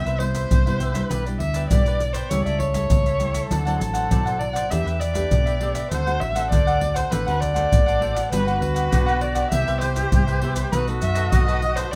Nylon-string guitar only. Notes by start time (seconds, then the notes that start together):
Already playing: C3 G3 B3 E4
0.19 G3 B3 E4
0.51 G2
0.66 G3 B3 E4
0.94 G3 D4 E4
1.11 B2
1.26 G3 D4 E4
1.70 B2 G3 D4 E4
2.31 C#3 G3 A3 E4
2.74 G3 A3 E4
2.91 C#3
3.19 G3 A3 E4
3.51 D3 F#3 C4 E4
3.66 F#3 C4 E4
4.10 A2 F#3 C4 E4
4.71 E3 A3 D4 G4
5.14 A3 D4 G4
5.31 B2
5.61 A3 D4 G4
5.92 D3 A3 C4 F#4
6.06 A3 C4 F#4
6.35 A3 C4 F#4
6.52 A2
6.81 A3 C4 F#4
7.11 D3
7.27 A3 C4 F#4
7.55 A3 C4 F#4
7.72 A2
8.00 A3 C4 F#4
8.32 G3 B3 D4 F#4
8.47 B3 D4 F#4
8.92 D3 B3 D4 F#4
9.52 C3 B3 E4 G4
9.97 E4 G4
10.12 G3
10.41 B3 E4 G4
10.71 B2 A3 D#4 F#4
10.87 A3 D#4 F#4
11.32 F#3 A3 D#4 F#4